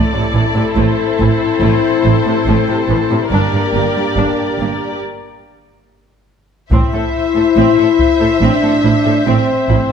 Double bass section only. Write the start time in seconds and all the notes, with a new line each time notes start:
0.35 A1
0.77 A1
1.20 A1
1.62 A1
2.04 A1
2.47 A1
2.89 A1
3.31 G1
3.74 G1
4.17 G1
4.59 G1
6.72 A1
7.57 A1
8.42 A1
8.85 A1
9.27 A1
9.70 A1